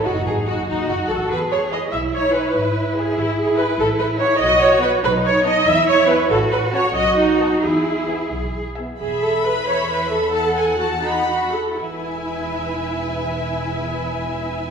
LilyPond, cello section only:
\new Staff \with { instrumentName = "Cello section" } { \time 6/8 \key e \major \tempo 4. = 92 dis'4. fis'4. | gis'4. e'4.~ | e'2.~ | e'4. fis'4. |
dis'4. e'4. | fis'4. fis'4. | gis'2~ gis'16 r8. | e,2.~ |
e,2~ e,8 r8 | e,2.~ | e,2. | }